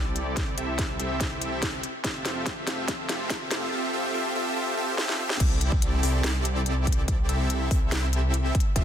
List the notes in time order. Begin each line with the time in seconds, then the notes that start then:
Already playing: C2 C4 E4 G4 A4 D5
0.16 closed hi-hat
0.37 kick, snare, closed hi-hat
0.58 C2 C4 E4 G4 A4 E5, closed hi-hat
0.79 kick, snare, closed hi-hat
1.00 C2 C4 E4 G4 A4 E5, closed hi-hat
1.21 kick, snare, closed hi-hat
1.42 closed hi-hat
1.62 kick, snare, closed hi-hat
1.83 closed hi-hat
2.04 F1 C4 F4 G4 A4 E5, kick, snare, closed hi-hat
2.25 F1 C4 F4 G4 A4 E5, snare, closed hi-hat
2.46 kick, snare, closed hi-hat
2.67 F1 C4 F4 G4 A4 E5, snare, closed hi-hat
2.88 F1, kick, snare, closed hi-hat
3.09 F1 C4 F4 G4 A4 E5, snare, closed hi-hat
3.30 kick, snare, closed hi-hat
3.51 F1 C4 F4 G4 A4 E5, snare, closed hi-hat
3.72 C4 F4 G4 A4 E5
3.93 C4 F4 G4 A4 E5
4.14 C4 F4 G4 A4 E5
4.35 C4 F4 G4 A4 E5
4.56 C4 F4 G4 A4 E5
4.77 C4 F4 G4 A4 E5
4.98 C4 F4 G4 A4 E5, snare
5.09 snare
5.19 C4 F4 G4 A4 E5
5.30 snare
5.40 C2 C4 E4 G4 A4 D5, kick, closed hi-hat, crash
5.61 C2 C4 E4 G4 A4 D5, closed hi-hat
5.72 kick
5.82 closed hi-hat
6.03 C2 C4 E4 G4 A4 D5, open hi-hat
6.24 E4 G4 A4 D5, snare, closed hi-hat
6.45 closed hi-hat
6.66 closed hi-hat
6.87 kick, closed hi-hat
6.92 closed hi-hat
7.08 kick, closed hi-hat
7.29 C2 C4 E4 G4 A4 E5, closed hi-hat
7.50 closed hi-hat
7.71 C2 C4 E4 G4 A4 E5, kick, open hi-hat
7.92 snare, closed hi-hat
8.13 closed hi-hat
8.34 closed hi-hat
8.55 kick, closed hi-hat
8.60 closed hi-hat
8.76 F1 C4 F4 G4 A4 E5, kick, closed hi-hat